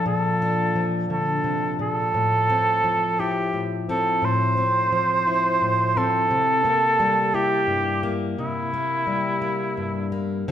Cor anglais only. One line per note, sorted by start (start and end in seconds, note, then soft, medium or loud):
0.07 1.06 A4 medium
1.12 1.76 A4 medium
1.82 3.21 A4 medium
3.19 3.62 G4 medium
3.90 4.26 A4 medium
4.25 5.99 C5 medium
5.97 7.36 A4 loud
7.34 8.12 G4 medium
8.40 10.10 E4 medium